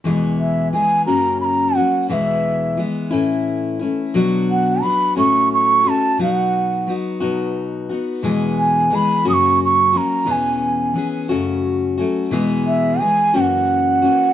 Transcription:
0.04 0.73 E2 medium
0.04 0.73 B2 medium
0.04 0.72 E3 medium
0.04 0.72 G#3 medium
0.04 0.73 B3 medium
0.04 0.74 G#4 medium
0.40 0.71 E5 medium
0.73 1.07 E3 medium
0.73 1.07 G#3 medium
0.73 1.07 B3 medium
0.73 1.06 G#4 medium
0.73 1.05 G#5 medium
1.06 1.76 F#2 soft
1.06 1.76 C#3 soft
1.06 1.76 F#3 soft
1.06 1.76 A#3 soft
1.06 1.75 C#4 medium
1.06 1.74 F#4 medium
1.06 1.38 A#5 medium
1.41 1.77 A#5 medium
1.41 1.45 B5 medium
1.75 2.09 F#3 soft
1.75 2.10 A#3 soft
1.75 2.10 C#4 soft
1.75 2.09 F#4 soft
1.75 2.09 F#5 medium
2.09 2.77 E2 medium
2.09 2.78 B2 medium
2.09 2.76 E3 medium
2.09 2.76 G#3 medium
2.09 2.78 B3 medium
2.09 2.78 E4 medium
2.09 2.14 F#5 medium
2.13 2.82 E5 medium
2.77 3.11 E3 medium
2.77 3.12 G#3 medium
2.77 3.12 B3 medium
2.77 3.09 E4 medium
3.11 3.81 A2 soft
3.11 3.80 E3 soft
3.11 3.80 A3 medium
3.11 3.80 C#4 medium
3.11 3.78 E4 medium
3.79 4.14 A3 soft
3.79 4.14 C#4 soft
3.79 4.14 E4 soft
4.14 4.82 B2 medium
4.14 4.81 F#3 medium
4.14 4.81 B3 medium
4.14 4.83 D4 medium
4.14 4.84 F#4 medium
4.50 4.84 F#5 medium
4.82 5.16 F#3 medium
4.82 5.17 B3 medium
4.82 5.16 D4 medium
4.82 5.14 F#4 medium
4.82 5.17 B5 medium
5.16 5.86 A2 medium
5.16 5.85 F#3 medium
5.16 5.85 A3 medium
5.16 5.85 C#4 medium
5.16 5.83 F#4 medium
5.16 5.49 C#6 medium
5.54 5.90 C#6 medium
5.84 6.19 A3 soft
5.84 6.19 C#4 soft
5.84 6.18 F#4 soft
5.89 6.21 A5 medium
6.18 6.87 B2 medium
6.18 6.85 F#3 medium
6.18 6.86 B3 medium
6.18 6.87 D#4 medium
6.18 6.88 F#4 medium
6.22 6.93 F#5 medium
6.87 7.21 F#3 soft
6.87 7.21 B3 medium
6.87 7.20 D#4 medium
6.87 7.19 F#4 medium
7.20 7.90 B2 medium
7.20 7.90 F#3 medium
7.20 7.90 B3 medium
7.20 7.89 D#4 medium
7.20 7.88 F#4 medium
7.89 8.23 B3 soft
7.89 8.24 D#4 soft
7.89 8.23 F#4 soft
8.23 8.91 E2 medium
8.23 8.92 B2 medium
8.23 8.89 E3 medium
8.23 8.90 G#3 medium
8.23 8.91 B3 medium
8.23 8.92 G#4 medium
8.59 8.96 G#5 medium
8.90 9.25 E3 medium
8.90 9.26 G#3 medium
8.90 9.25 B3 medium
8.90 9.25 G#4 medium
8.95 9.27 B5 medium
9.25 9.95 F#2 medium
9.25 9.95 C#3 soft
9.25 9.94 F#3 medium
9.25 9.94 A#3 medium
9.25 9.93 C#4 medium
9.25 9.92 F#4 medium
9.29 9.35 D#6 medium
9.34 9.59 C#6 medium
9.65 9.99 C#6 medium
9.93 10.25 F#3 soft
9.93 10.26 A#3 soft
9.93 10.26 C#4 soft
9.93 10.27 F#4 soft
9.97 10.33 A#5 medium
10.25 10.95 E2 medium
10.25 10.96 B2 medium
10.25 10.92 E3 medium
10.25 10.94 B3 medium
10.25 10.95 C#4 medium
10.25 10.96 G#4 medium
10.31 11.07 G#5 medium
10.94 11.29 E3 medium
10.94 11.30 B3 medium
10.94 11.29 C#4 soft
10.94 11.29 G#4 medium
11.29 11.99 F#2 medium
11.29 11.99 C#3 medium
11.29 11.99 F#3 medium
11.29 11.99 A3 medium
11.29 11.98 C#4 medium
11.29 11.96 F#4 medium
11.98 12.32 F#3 soft
11.98 12.32 A3 soft
11.98 12.32 C#4 soft
11.98 12.33 F#4 soft
12.31 13.00 E2 medium
12.31 13.01 B2 medium
12.31 12.98 E3 medium
12.31 12.99 G#3 medium
12.31 13.00 B3 medium
12.31 13.01 G#4 medium
12.67 13.01 E5 medium
12.99 13.33 E3 medium
12.99 13.35 G#3 medium
12.99 13.34 B3 medium
12.99 13.33 G#4 medium
12.99 13.37 G#5 medium
13.34 14.04 F#2 soft
13.34 14.04 C#3 soft
13.34 14.03 E3 soft
13.34 14.03 A#3 medium
13.34 14.02 C#4 medium
13.34 14.01 F#4 medium
13.34 13.42 G5 medium
13.41 14.33 F#5 medium
14.02 14.33 E3 soft
14.02 14.33 A#3 soft
14.02 14.33 C#4 soft
14.02 14.33 F#4 soft

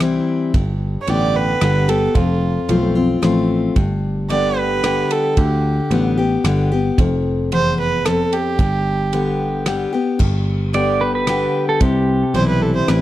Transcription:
0.00 0.19 C2 medium
0.00 0.51 E3 medium
0.00 0.52 G3 medium
0.00 0.52 C4 medium
0.00 0.52 E4 medium
0.00 cross-stick medium
0.00 ride medium
0.54 0.96 G1 medium
0.54 1.56 G2 medium
0.54 kick loud
0.54 ride medium
1.01 1.11 C#5 medium
1.07 1.54 A1 medium
1.07 1.58 D3 soft
1.07 1.59 G3 medium
1.07 1.59 B3 medium
1.07 1.59 G4 medium
1.07 1.37 D5 medium
1.07 ride medium
1.36 1.90 B4 medium
1.61 2.07 G1 medium
1.61 1.87 D3 medium
1.61 1.87 G3 medium
1.61 1.88 B3 medium
1.61 1.87 G4 medium
1.61 cross-stick medium
1.61 ride medium
1.88 2.15 B3 soft
1.88 2.14 G4 soft
1.88 2.16 A4 medium
1.88 ride medium
2.15 2.57 F1 medium
2.15 3.17 F2 medium
2.15 2.69 F4 medium
2.15 kick loud
2.15 ride medium
2.69 3.14 B1 medium
2.69 2.94 F3 soft
2.69 2.95 A3 medium
2.69 2.95 C4 medium
2.69 2.94 F4 medium
2.69 ride medium
2.95 3.22 C4 soft
2.95 3.21 F4 medium
3.22 3.68 A1 medium
3.22 3.73 F3 medium
3.22 3.73 A3 medium
3.22 3.74 C4 medium
3.22 3.74 F4 medium
3.22 cross-stick medium
3.22 ride medium
3.76 5.02 G1 medium
3.76 4.78 G2 medium
3.76 kick loud
3.76 ride medium
4.29 4.81 D3 medium
4.29 4.81 G3 medium
4.29 4.81 B3 soft
4.29 4.81 G4 medium
4.29 4.60 D5 medium
4.29 ride medium
4.58 5.13 B4 loud
4.83 5.34 D3 medium
4.83 5.35 G3 medium
4.83 5.35 B3 medium
4.83 5.35 G4 medium
4.83 cross-stick medium
4.83 ride medium
5.11 5.39 A4 medium
5.11 ride medium
5.37 5.79 D2 medium
5.37 5.89 D3 medium
5.37 5.91 G4 medium
5.37 kick loud
5.37 ride medium
5.91 6.36 A1 medium
5.91 6.16 D3 soft
5.91 6.17 G3 medium
5.91 6.17 B3 medium
5.91 6.16 G4 medium
5.91 ride medium
6.18 6.44 B3 soft
6.18 6.43 G4 medium
6.44 6.90 G1 medium
6.44 6.70 D3 medium
6.44 6.70 G3 medium
6.44 6.71 B3 medium
6.44 6.70 G4 medium
6.44 cross-stick medium
6.44 ride medium
6.72 6.98 B3 soft
6.72 6.97 G4 medium
6.98 8.24 F1 medium
6.98 7.51 F2 medium
6.98 kick loud
6.98 ride medium
7.52 8.03 E2 medium
7.52 7.77 C5 medium
7.52 ride soft
7.80 8.07 B4 medium
8.05 8.56 F2 medium
8.05 8.34 A4 medium
8.05 cross-stick medium
8.05 ride medium
8.33 9.67 G4 medium
8.33 ride soft
8.59 9.85 G1 medium
8.59 9.61 G2 medium
8.59 kick loud
8.59 ride medium
9.13 9.64 D3 medium
9.13 9.64 G3 medium
9.13 9.64 B3 medium
9.13 9.64 G4 medium
9.13 ride soft
9.66 9.92 D3 medium
9.66 9.92 G3 medium
9.66 9.92 B3 medium
9.66 9.91 G4 medium
9.66 cross-stick medium
9.66 ride medium
9.93 10.19 B3 soft
9.93 10.19 G4 soft
10.19 11.46 G1 medium
10.19 11.22 G2 medium
10.19 kick loud
10.19 crash medium
10.73 11.25 D3 medium
10.73 11.25 G3 medium
10.73 11.25 B3 medium
10.73 11.25 G4 medium
10.73 11.02 D5 medium
10.73 ride medium
11.01 11.14 B4 medium
11.15 11.65 B4 medium
11.27 11.78 D3 medium
11.27 11.79 G3 medium
11.27 11.79 B3 medium
11.27 11.79 G4 medium
11.27 cross-stick medium
11.27 ride medium
11.69 11.82 A4 medium
11.81 12.23 C2 medium
11.81 12.83 C3 medium
11.81 12.36 G4 medium
11.81 kick loud
11.81 ride medium
12.34 12.80 B1 medium
12.34 12.86 E3 medium
12.34 12.86 G3 medium
12.34 12.86 C4 medium
12.34 12.87 E4 medium
12.34 12.47 C5 medium
12.34 ride soft
12.48 12.63 B4 medium
12.62 12.74 A4 medium
12.75 12.90 C5 medium
12.88 13.01 A1 medium
12.88 13.01 E3 medium
12.88 13.01 G3 medium
12.88 13.01 C4 medium
12.88 13.01 E4 medium
12.88 13.01 B4 medium
12.88 cross-stick medium
12.88 ride medium

